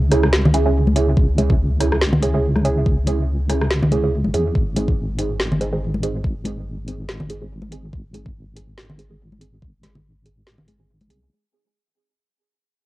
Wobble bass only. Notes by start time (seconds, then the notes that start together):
Already playing: C#2
1.17 C#2
2.86 C#2
4.25 G#1
4.34 E2
4.55 G#1
6.24 G#1
7.93 G#1
9.62 G#1
11.10 C2